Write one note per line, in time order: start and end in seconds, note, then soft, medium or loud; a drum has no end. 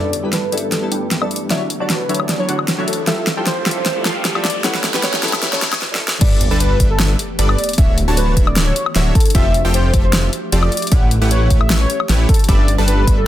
0.00 0.22 G1 medium
0.00 1.49 E3 medium
0.00 0.12 G3 medium
0.00 1.49 A3 medium
0.00 1.49 B3 medium
0.00 0.12 D4 medium
0.00 1.49 G4 medium
0.00 0.12 A4 medium
0.00 0.12 B4 medium
0.00 0.21 D5 loud
0.00 0.12 E5 medium
0.00 riser medium
0.13 closed hi-hat medium
0.23 0.51 G1 loud
0.23 0.28 G3 medium
0.23 0.50 G3 medium
0.23 0.29 B3 medium
0.23 0.50 D4 medium
0.23 0.29 E4 medium
0.23 0.50 A4 medium
0.23 0.50 B4 medium
0.23 0.29 B4 medium
0.23 0.50 A5 loud
0.33 0.53 B4 medium
0.33 snare soft
0.33 closed hi-hat medium
0.51 0.90 G1 medium
0.51 0.61 G3 medium
0.51 0.89 G3 medium
0.51 0.62 B3 medium
0.51 0.89 D4 medium
0.51 0.62 E4 medium
0.51 0.89 A4 medium
0.51 0.62 A4 loud
0.51 0.89 B4 medium
0.51 0.89 E5 medium
0.51 closed hi-hat soft
0.57 closed hi-hat medium
0.63 0.83 A4 loud
0.72 snare medium
0.72 closed hi-hat medium
0.81 0.87 G3 medium
0.81 0.88 B3 medium
0.81 0.88 E4 medium
0.81 0.88 A4 loud
0.92 1.23 G1 medium
0.92 1.19 G3 medium
0.92 1.19 D4 medium
0.92 1.19 A4 medium
0.92 1.19 B4 medium
0.92 1.19 G5 medium
0.92 closed hi-hat medium
1.11 snare medium
1.11 closed hi-hat medium
1.21 1.49 G2 medium
1.21 1.30 G3 medium
1.21 1.33 G3 medium
1.21 1.30 B3 medium
1.21 1.33 D4 medium
1.21 1.30 E4 medium
1.21 1.33 A4 medium
1.21 1.31 A4 loud
1.21 1.33 B4 medium
1.21 1.41 D5 loud
1.21 1.33 E5 loud
1.21 high woodblock medium
1.31 closed hi-hat medium
1.36 closed hi-hat medium
1.49 1.78 D1 medium
1.49 1.69 D3 medium
1.49 3.06 E3 medium
1.49 1.56 F#3 loud
1.49 1.56 D4 medium
1.49 3.06 D4 medium
1.49 1.69 D4 medium
1.49 1.57 E4 medium
1.49 3.06 F#4 loud
1.49 1.69 F#4 medium
1.49 1.69 C#5 medium
1.49 3.06 C#5 medium
1.49 1.57 C#5 loud
1.49 1.64 E5 medium
1.49 1.69 E5 medium
1.49 snare medium
1.49 closed hi-hat medium
1.70 closed hi-hat medium
1.79 2.07 D1 loud
1.79 2.07 D3 medium
1.79 1.85 F#3 medium
1.79 1.86 D4 medium
1.79 2.07 D4 medium
1.79 1.86 E4 medium
1.79 2.07 F#4 medium
1.79 2.07 C#5 medium
1.79 1.86 D5 loud
1.79 2.07 A5 loud
1.90 2.21 B4 medium
1.90 snare medium
1.90 closed hi-hat medium
2.08 2.47 D1 medium
2.08 2.46 D3 medium
2.08 2.18 F#3 medium
2.08 2.19 D4 medium
2.08 2.46 D4 medium
2.08 2.19 E4 medium
2.08 2.46 F#4 medium
2.08 2.46 C#5 medium
2.08 2.19 C#5 loud
2.08 2.46 E5 medium
2.08 closed hi-hat soft
2.15 closed hi-hat medium
2.19 2.33 D5 loud
2.19 high woodblock medium
2.29 snare medium
2.29 closed hi-hat medium
2.38 2.44 F#3 medium
2.38 2.44 D4 medium
2.38 2.45 E4 medium
2.38 2.59 C#5 medium
2.38 2.45 C#5 loud
2.48 2.80 D1 medium
2.48 2.76 D3 medium
2.48 2.76 D4 medium
2.48 2.76 F#4 medium
2.48 2.76 C#5 medium
2.48 2.76 F#5 loud
2.48 closed hi-hat medium
2.59 high woodblock medium
2.68 snare medium
2.68 closed hi-hat medium
2.77 3.09 D2 loud
2.77 2.90 D3 loud
2.77 2.87 F#3 medium
2.77 2.87 D4 medium
2.77 2.90 D4 medium
2.77 2.87 E4 medium
2.77 2.90 F#4 medium
2.77 2.90 C#5 medium
2.77 2.88 C#5 loud
2.77 2.90 E5 loud
2.88 3.01 A4 medium
2.88 closed hi-hat medium
2.93 closed hi-hat medium
3.06 3.35 F1 loud
3.06 3.26 F3 medium
3.06 4.63 F3 medium
3.06 3.13 G3 loud
3.06 5.79 A3 medium
3.06 3.13 E4 medium
3.06 3.26 F4 medium
3.06 3.13 F4 medium
3.06 3.26 G4 medium
3.06 5.79 G4 medium
3.06 3.26 A4 medium
3.06 3.14 A4 loud
3.06 3.34 E5 loud
3.06 3.26 E5 medium
3.06 4.63 E5 medium
3.06 snare medium
3.06 closed hi-hat medium
3.27 snare medium
3.27 closed hi-hat medium
3.36 3.64 F1 loud
3.36 3.64 F3 medium
3.36 3.42 G3 medium
3.36 3.43 E4 medium
3.36 3.64 F4 medium
3.36 3.43 F4 medium
3.36 3.64 G4 medium
3.36 3.64 A4 medium
3.36 3.43 C5 loud
3.36 3.64 G5 loud
3.46 3.67 C5 loud
3.46 snare medium
3.46 closed hi-hat medium
3.65 4.04 F1 loud
3.65 4.03 F3 medium
3.65 3.75 G3 medium
3.65 3.76 E4 medium
3.65 4.03 F4 medium
3.65 3.76 F4 medium
3.65 4.03 G4 medium
3.65 4.03 A4 medium
3.65 3.76 A4 loud
3.65 4.03 E5 medium
3.65 snare medium
3.65 closed hi-hat soft
3.71 closed hi-hat medium
3.76 3.96 C5 loud
3.86 snare medium
3.86 closed hi-hat medium
3.95 4.01 G3 medium
3.95 4.01 E4 medium
3.95 4.02 F4 medium
3.95 4.02 A4 loud
4.05 4.33 F1 medium
4.05 4.33 F3 medium
4.05 4.33 F4 medium
4.05 4.33 G4 medium
4.05 4.33 A4 medium
4.05 4.33 F5 medium
4.05 snare medium
4.05 closed hi-hat medium
4.25 snare medium
4.25 closed hi-hat medium
4.34 4.62 F1 medium
4.34 4.46 F3 medium
4.34 4.43 G3 medium
4.34 4.44 E4 medium
4.34 4.46 F4 medium
4.34 4.44 F4 medium
4.34 4.46 G4 medium
4.34 4.46 A4 medium
4.34 4.44 A4 loud
4.34 4.55 D5 loud
4.34 4.46 E5 loud
4.34 high woodblock medium
4.45 snare loud
4.45 closed hi-hat soft
4.50 closed hi-hat medium
4.63 4.92 A1 medium
4.63 4.70 G3 loud
4.63 4.83 A3 medium
4.63 4.70 C#4 medium
4.63 4.83 E4 medium
4.63 4.70 E4 medium
4.63 4.83 G4 medium
4.63 4.71 A4 loud
4.63 4.83 B4 medium
4.63 4.83 C#5 medium
4.63 4.78 F#5 loud
4.63 snare medium
4.63 closed hi-hat medium
4.75 snare medium
4.84 snare medium
4.84 closed hi-hat medium
4.93 5.21 A1 loud
4.93 4.99 G3 medium
4.93 5.21 A3 medium
4.93 4.99 C#4 medium
4.93 5.21 E4 medium
4.93 5.00 E4 medium
4.93 5.21 G4 medium
4.93 5.21 B4 medium
4.93 5.00 B4 loud
4.93 5.21 F#5 loud
4.93 snare medium
5.03 5.23 C#5 loud
5.03 snare loud
5.03 closed hi-hat medium
5.14 snare medium
5.22 5.58 A1 medium
5.22 5.32 G3 medium
5.22 5.60 A3 medium
5.22 5.32 C#4 medium
5.22 5.60 E4 medium
5.22 5.33 E4 medium
5.22 5.60 G4 medium
5.22 5.33 A4 loud
5.22 5.60 B4 medium
5.22 5.60 C#5 medium
5.22 snare loud
5.22 closed hi-hat soft
5.28 closed hi-hat medium
5.33 5.46 E5 loud
5.33 snare medium
5.33 high woodblock medium
5.43 snare loud
5.43 closed hi-hat medium
5.52 5.58 G3 medium
5.52 5.58 C#4 medium
5.52 5.59 E4 medium
5.52 5.59 A4 loud
5.52 5.73 C#5 medium
5.52 snare medium
5.62 snare loud
5.62 closed hi-hat medium
5.73 snare medium
5.73 high woodblock medium
5.82 snare medium
5.91 6.00 G3 loud
5.91 6.01 C#4 loud
5.91 6.01 E4 medium
5.91 6.01 A4 loud
5.91 snare medium
6.08 snare loud
6.21 6.49 G1 medium
6.21 9.32 E3 medium
6.21 6.40 G3 medium
6.21 7.76 A3 medium
6.21 7.76 B3 medium
6.21 6.40 D4 medium
6.21 7.76 G4 medium
6.21 6.40 A4 medium
6.21 6.40 B4 medium
6.21 6.48 D5 loud
6.21 6.40 E5 medium
6.21 kick loud
6.21 closed hi-hat medium
6.21 crash loud
6.21 sub drop medium
6.41 closed hi-hat medium
6.51 6.78 G1 loud
6.51 6.78 G3 medium
6.51 6.78 D4 medium
6.51 6.78 A4 medium
6.51 6.78 B4 medium
6.51 6.78 A5 loud
6.60 6.80 B4 medium
6.60 closed hi-hat medium
6.80 7.15 G1 loud
6.80 7.17 G3 medium
6.80 7.17 D4 medium
6.80 7.17 B4 medium
6.80 7.17 E5 medium
6.80 kick medium
6.80 closed hi-hat medium
6.90 7.10 A4 loud
7.00 snare loud
7.00 closed hi-hat medium
7.19 closed hi-hat medium
7.39 7.55 G1 medium
7.39 7.57 G3 medium
7.39 7.57 D4 medium
7.39 7.57 A4 medium
7.39 7.57 B4 medium
7.39 7.57 D5 loud
7.39 closed hi-hat medium
7.49 7.69 D5 loud
7.49 high woodblock medium
7.58 closed hi-hat medium
7.64 closed hi-hat medium
7.69 closed hi-hat medium
7.73 closed hi-hat medium
7.78 8.06 D1 medium
7.78 7.96 D3 medium
7.78 9.33 D4 medium
7.78 7.96 D4 medium
7.78 9.33 F#4 medium
7.78 7.96 F#4 medium
7.78 9.33 C#5 medium
7.78 7.96 C#5 medium
7.78 7.92 E5 medium
7.78 7.96 E5 medium
7.78 kick loud
7.78 closed hi-hat medium
7.98 closed hi-hat medium
8.08 8.35 D1 loud
8.08 8.35 D3 medium
8.08 8.35 D4 medium
8.08 8.35 F#4 medium
8.08 8.35 C#5 medium
8.08 8.35 A5 loud
8.17 8.37 B4 medium
8.17 closed hi-hat medium
8.37 8.72 D1 loud
8.37 8.74 D3 medium
8.37 8.74 D4 medium
8.37 8.74 F#4 medium
8.37 8.74 C#5 medium
8.37 8.74 E5 medium
8.37 kick medium
8.37 closed hi-hat medium
8.47 8.60 D5 medium
8.47 high woodblock medium
8.56 snare loud
8.56 closed hi-hat medium
8.67 8.87 C#5 medium
8.76 closed hi-hat medium
8.86 high woodblock medium
8.96 9.12 D1 loud
8.96 9.14 D3 medium
8.96 9.14 D4 medium
8.96 9.14 F#4 medium
8.96 9.14 C#5 medium
8.96 9.14 E5 loud
8.96 snare medium
8.96 closed hi-hat medium
9.15 9.29 A4 medium
9.15 kick loud
9.15 closed hi-hat medium
9.20 closed hi-hat medium
9.25 closed hi-hat medium
9.30 closed hi-hat medium
9.35 9.63 F1 loud
9.35 10.90 F3 medium
9.35 9.53 F3 medium
9.35 10.90 A3 medium
9.35 9.53 F4 medium
9.35 13.27 G4 medium
9.35 9.53 G4 medium
9.35 9.53 A4 medium
9.35 10.90 E5 medium
9.35 9.53 E5 medium
9.35 9.62 E5 loud
9.35 kick loud
9.35 closed hi-hat medium
9.54 closed hi-hat medium
9.65 9.92 F1 loud
9.65 9.91 F3 medium
9.65 9.91 F4 medium
9.65 9.91 G4 medium
9.65 9.91 A4 medium
9.65 9.91 G5 loud
9.74 9.94 C5 loud
9.74 closed hi-hat medium
9.94 10.29 F1 medium
9.94 10.31 F3 medium
9.94 10.31 F4 medium
9.94 10.31 G4 medium
9.94 10.31 A4 medium
9.94 kick medium
9.94 closed hi-hat medium
10.04 10.24 C5 loud
10.13 snare loud
10.13 closed hi-hat medium
10.33 closed hi-hat medium
10.52 10.69 F1 medium
10.52 10.71 F3 medium
10.52 10.71 F4 medium
10.52 10.71 G4 medium
10.52 10.71 A4 medium
10.52 10.71 D5 loud
10.52 closed hi-hat medium
10.63 10.93 D5 medium
10.63 high woodblock medium
10.72 closed hi-hat soft
10.77 closed hi-hat medium
10.82 closed hi-hat soft
10.87 closed hi-hat medium
10.92 11.20 A1 medium
10.92 12.47 E3 medium
10.92 11.10 A3 medium
10.92 12.47 A3 medium
10.92 12.47 C#4 medium
10.92 11.10 E4 medium
10.92 11.10 G4 medium
10.92 11.10 B4 medium
10.92 11.10 C#5 medium
10.92 11.05 F#5 medium
10.92 kick loud
10.92 closed hi-hat medium
11.11 closed hi-hat medium
11.22 11.49 A1 loud
11.22 11.48 A3 medium
11.22 11.48 E4 medium
11.22 11.48 G4 medium
11.22 11.48 B4 medium
11.22 11.48 F#5 loud
11.31 11.51 C#5 medium
11.31 closed hi-hat medium
11.50 11.86 A1 medium
11.50 11.88 A3 medium
11.50 11.87 E4 medium
11.50 11.88 G4 medium
11.50 11.88 B4 medium
11.50 11.88 C#5 medium
11.50 kick medium
11.50 closed hi-hat medium
11.61 11.74 E5 medium
11.61 high woodblock medium
11.70 snare loud
11.70 closed hi-hat medium
11.80 12.00 C#5 loud
11.90 closed hi-hat medium
12.00 high woodblock medium
12.09 12.26 A1 loud
12.09 12.28 A3 medium
12.09 12.28 E4 medium
12.09 12.28 G4 medium
12.09 12.28 B4 medium
12.09 12.28 C#5 loud
12.09 snare medium
12.09 closed hi-hat medium
12.29 12.43 A4 medium
12.29 kick loud
12.29 closed hi-hat soft
12.34 closed hi-hat medium
12.39 closed hi-hat soft
12.44 closed hi-hat medium
12.49 12.76 G1 medium
12.49 13.27 E3 medium
12.49 12.67 G3 medium
12.49 13.27 A3 medium
12.49 13.27 B3 medium
12.49 12.67 D4 medium
12.49 12.67 A4 medium
12.49 12.67 B4 medium
12.49 12.76 D5 loud
12.49 12.67 E5 medium
12.49 kick loud
12.49 closed hi-hat medium
12.68 closed hi-hat medium
12.78 13.06 G1 loud
12.78 13.05 G3 loud
12.78 13.05 D4 medium
12.78 13.05 A4 medium
12.78 13.05 B4 medium
12.78 13.05 A5 loud
12.88 13.08 B4 loud
12.88 closed hi-hat medium
13.07 13.27 G1 medium
13.07 13.27 G3 medium
13.07 13.27 D4 medium
13.07 13.27 B4 medium
13.07 13.27 E5 medium
13.07 kick medium
13.07 closed hi-hat medium
13.18 13.27 A4 loud